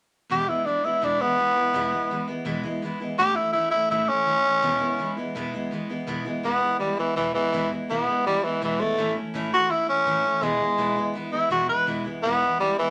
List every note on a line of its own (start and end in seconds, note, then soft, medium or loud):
0.29 0.48 E2 medium
0.29 0.48 B2 medium
0.29 0.48 E3 medium
0.29 0.49 G#3 medium
0.29 0.48 B3 medium
0.29 0.47 E4 medium
0.29 0.50 G4 medium
0.48 0.65 E3 soft
0.48 0.66 G#3 soft
0.48 0.67 B3 soft
0.48 0.66 E4 medium
0.48 0.67 E4 medium
0.66 0.84 E3 medium
0.66 0.84 G#3 medium
0.66 0.84 B3 medium
0.66 0.86 D4 medium
0.66 0.83 E4 medium
0.84 1.01 E3 soft
0.84 1.02 G#3 soft
0.84 1.02 B3 soft
0.84 1.02 E4 medium
0.84 1.06 E4 medium
1.01 1.20 E2 medium
1.01 1.20 B2 medium
1.01 1.20 E3 medium
1.01 1.20 G#3 medium
1.01 1.19 B3 medium
1.01 1.23 D4 loud
1.01 1.18 E4 medium
1.19 1.36 E3 medium
1.19 1.37 G#3 soft
1.19 1.38 B3 medium
1.19 2.26 B3 loud
1.19 1.38 E4 medium
1.37 1.55 E3 medium
1.37 1.56 G#3 medium
1.37 1.55 B3 medium
1.37 1.54 E4 medium
1.55 1.73 E3 soft
1.55 1.74 G#3 soft
1.55 1.74 B3 soft
1.55 1.74 E4 medium
1.73 1.92 E2 medium
1.73 1.92 B2 medium
1.73 1.92 E3 loud
1.73 1.93 G#3 loud
1.73 1.91 B3 loud
1.73 1.90 E4 loud
1.91 2.09 E3 soft
1.91 2.10 G#3 soft
1.91 2.10 B3 soft
1.91 2.10 E4 medium
2.10 2.28 E3 medium
2.10 2.29 G#3 medium
2.10 2.27 B3 medium
2.10 2.26 E4 medium
2.28 2.44 E3 soft
2.28 2.45 G#3 soft
2.28 2.45 B3 medium
2.28 2.46 E4 medium
2.45 2.64 E2 medium
2.45 2.64 B2 medium
2.45 2.64 E3 loud
2.45 2.64 G#3 medium
2.45 2.63 B3 loud
2.45 2.62 E4 medium
2.63 2.81 E3 medium
2.63 2.82 G#3 medium
2.63 2.82 B3 medium
2.63 2.82 E4 medium
2.82 3.00 E3 medium
2.82 3.01 G#3 medium
2.82 3.00 B3 medium
2.82 2.99 E4 medium
3.00 3.17 E3 medium
3.00 3.19 G#3 medium
3.00 3.19 B3 medium
3.00 3.18 E4 medium
3.18 3.36 A2 medium
3.18 3.36 E3 medium
3.18 3.37 A3 medium
3.18 3.36 C#4 medium
3.18 3.34 E4 medium
3.18 3.37 G4 loud
3.35 3.54 A3 soft
3.35 3.54 C#4 soft
3.35 3.54 E4 medium
3.35 3.52 E4 medium
3.53 3.72 E3 medium
3.53 3.73 A3 medium
3.53 3.73 C#4 medium
3.53 3.70 E4 medium
3.53 3.71 E4 medium
3.71 3.91 C#4 soft
3.71 3.89 E4 medium
3.71 3.91 E4 medium
3.76 3.90 A3 soft
3.90 4.08 A2 medium
3.90 4.09 E3 medium
3.90 4.09 A3 medium
3.90 4.09 C#4 medium
3.90 4.10 E4 medium
3.90 4.07 E4 medium
4.08 4.26 A3 soft
4.08 5.14 C#4 loud
4.08 4.27 C#4 soft
4.08 4.26 E4 medium
4.26 4.44 E3 medium
4.26 4.45 A3 medium
4.26 4.45 C#4 medium
4.26 4.43 E4 medium
4.44 4.63 A3 soft
4.44 4.63 C#4 medium
4.44 4.63 E4 medium
4.62 4.81 E2 medium
4.62 4.81 B2 loud
4.62 4.81 E3 loud
4.62 4.81 G#3 loud
4.62 4.80 B3 loud
4.62 4.79 E4 loud
4.80 4.97 E3 soft
4.80 4.99 G#3 soft
4.80 4.99 B3 medium
4.80 4.99 E4 medium
4.98 5.17 E3 medium
4.98 5.18 G#3 medium
4.98 5.17 B3 medium
4.98 5.16 E4 medium
5.17 5.34 E3 soft
5.17 5.35 G#3 soft
5.17 5.35 B3 medium
5.17 5.35 E4 medium
5.35 5.53 E2 medium
5.35 5.54 B2 medium
5.35 5.54 E3 medium
5.35 5.54 G#3 medium
5.35 5.53 B3 medium
5.35 5.52 E4 loud
5.54 5.70 E3 medium
5.54 5.71 G#3 medium
5.54 5.72 B3 medium
5.54 5.72 E4 medium
5.71 5.89 E3 medium
5.71 5.90 G#3 medium
5.71 5.89 B3 medium
5.71 5.88 E4 medium
5.89 6.06 E3 medium
5.89 6.07 G#3 medium
5.89 6.07 B3 medium
5.89 6.08 E4 medium
6.07 6.25 E2 medium
6.07 6.26 B2 medium
6.07 6.26 E3 medium
6.07 6.26 G#3 loud
6.07 6.24 B3 loud
6.07 6.24 E4 loud
6.25 6.43 E3 medium
6.25 6.44 G#3 soft
6.25 6.44 B3 medium
6.25 6.43 E4 medium
6.43 6.62 E2 medium
6.43 6.62 B2 medium
6.43 6.62 E3 medium
6.43 6.62 G#3 medium
6.43 6.79 B3 medium
6.43 6.61 B3 medium
6.43 6.60 E4 medium
6.61 6.78 E3 soft
6.61 6.80 G#3 medium
6.61 6.80 B3 medium
6.61 6.80 E4 soft
6.80 6.98 E3 medium
6.80 6.98 G3 medium
6.80 6.98 G#3 medium
6.80 6.98 B3 medium
6.80 6.96 E4 medium
6.97 7.16 E3 medium
6.97 7.16 E3 soft
6.97 7.16 G#3 soft
6.97 7.16 B3 medium
6.97 7.16 E4 medium
7.16 7.34 E2 medium
7.16 7.34 B2 medium
7.16 7.34 E3 medium
7.16 7.35 E3 medium
7.16 7.35 G#3 medium
7.16 7.34 B3 medium
7.16 7.33 E4 medium
7.34 7.70 E3 loud
7.34 7.52 E3 soft
7.34 7.53 G#3 medium
7.34 7.53 B3 medium
7.34 7.53 E4 medium
7.53 7.71 E2 medium
7.53 7.71 B2 medium
7.53 7.71 E3 medium
7.53 7.71 G#3 medium
7.53 7.71 B3 medium
7.53 7.70 E4 medium
7.71 7.89 E3 soft
7.71 7.89 G#3 soft
7.71 7.90 B3 soft
7.71 7.89 E4 medium
7.89 8.07 E2 medium
7.89 8.07 B2 medium
7.89 8.08 E3 medium
7.89 8.08 G#3 medium
7.89 8.25 B3 medium
7.89 8.08 B3 medium
7.89 8.06 E4 medium
8.08 8.24 E3 soft
8.08 8.26 G#3 soft
8.08 8.26 B3 medium
8.08 8.26 E4 soft
8.26 8.44 E3 medium
8.26 8.46 G3 medium
8.26 8.44 G#3 medium
8.26 8.43 B3 medium
8.26 8.42 E4 medium
8.43 8.61 E3 medium
8.43 8.61 G#3 soft
8.43 8.62 B3 medium
8.43 8.62 E4 medium
8.61 8.80 E2 medium
8.61 8.80 B2 medium
8.61 8.80 E3 medium
8.61 8.82 E3 medium
8.61 8.80 G#3 medium
8.61 8.79 B3 medium
8.61 8.78 E4 medium
8.79 8.97 E3 soft
8.79 8.99 G#3 soft
8.79 9.15 A3 loud
8.79 8.98 B3 medium
8.79 8.98 E4 medium
8.98 9.16 A2 medium
8.98 9.16 E3 medium
8.98 9.17 A3 medium
8.98 9.16 C#4 medium
8.98 9.14 E4 medium
9.15 9.34 A3 soft
9.15 9.34 C#4 soft
9.15 9.34 E4 medium
9.34 9.52 A2 medium
9.34 9.52 E3 medium
9.34 9.53 A3 medium
9.34 9.51 C#4 medium
9.34 9.50 E4 medium
9.51 9.69 A3 soft
9.51 9.70 C#4 soft
9.51 9.70 E4 medium
9.51 9.72 F#4 loud
9.69 9.88 E3 medium
9.69 9.88 A3 medium
9.69 9.87 C#4 medium
9.69 9.88 E4 medium
9.69 9.85 E4 medium
9.87 10.06 A3 soft
9.87 10.06 C#4 medium
9.87 10.44 C#4 medium
9.87 10.06 E4 medium
10.06 10.24 A2 medium
10.06 10.25 E3 medium
10.06 10.25 A3 medium
10.06 10.24 C#4 medium
10.06 10.23 E4 medium
10.24 10.42 A3 soft
10.24 10.43 C#4 medium
10.24 10.43 E4 medium
10.42 10.60 E2 medium
10.42 10.60 B2 medium
10.42 10.61 E3 medium
10.42 10.61 G#3 medium
10.42 11.13 G#3 medium
10.42 10.59 B3 medium
10.42 10.58 E4 medium
10.59 10.77 E3 soft
10.59 10.78 G#3 soft
10.59 10.78 B3 soft
10.59 10.78 E4 soft
10.77 10.96 E2 medium
10.77 10.97 B2 medium
10.77 10.97 E3 medium
10.77 10.97 G#3 medium
10.77 10.96 B3 medium
10.77 10.95 E4 medium
10.96 11.12 E3 soft
10.96 11.14 G#3 medium
10.96 11.14 B3 medium
10.96 11.15 E4 medium
11.13 11.33 E3 medium
11.13 11.32 G#3 medium
11.13 11.31 B3 medium
11.13 11.30 E4 medium
11.32 11.49 E3 soft
11.32 11.50 G#3 soft
11.32 11.50 B3 medium
11.32 11.51 E4 soft
11.32 11.50 E4 loud
11.50 11.69 E2 medium
11.50 11.69 B2 medium
11.50 11.69 E3 medium
11.50 11.69 G#3 medium
11.50 11.68 B3 medium
11.50 11.67 E4 medium
11.50 11.69 F#4 medium
11.68 11.86 E3 soft
11.68 11.86 G#3 soft
11.68 11.87 B3 soft
11.68 11.87 E4 medium
11.68 11.87 B4 medium
11.86 12.05 E2 medium
11.86 12.06 B2 medium
11.86 12.06 E3 medium
11.86 12.06 G#3 medium
11.86 12.05 B3 medium
11.86 12.03 E4 medium
12.05 12.24 E3 soft
12.05 12.24 G#3 medium
12.05 12.24 B3 medium
12.05 12.24 E4 medium
12.23 12.42 E2 medium
12.23 12.43 B2 medium
12.23 12.43 E3 medium
12.23 12.43 G#3 medium
12.23 12.59 B3 medium
12.23 12.42 B3 medium
12.23 12.41 E4 medium
12.42 12.58 E3 soft
12.42 12.60 G#3 soft
12.42 12.60 B3 medium
12.42 12.60 E4 medium
12.60 12.78 E3 medium
12.60 12.78 G3 medium
12.60 12.79 G#3 medium
12.60 12.78 B3 medium
12.60 12.77 E4 medium
12.78 12.90 E3 medium
12.78 12.90 E3 soft
12.78 12.90 G#3 medium
12.78 12.90 B3 medium
12.78 12.90 E4 medium